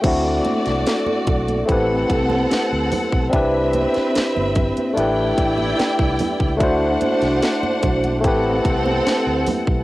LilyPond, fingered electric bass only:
\new Staff \with { instrumentName = "Fingered electric bass" } { \clef bass \time 4/4 \key d \mixolydian \tempo 4 = 73 d,8 r16 c,16 r8 b,,8 a,,8 c,8 r16 d,16 r16 b,,16 | c,8. r8 g,,8 r16 a,,8 a,,8 r16 c,16 r16 cis,16 | d,8 r16 c,16 r8 b,,8 a,,8 c,8 r16 d,16 r16 b,,16 | }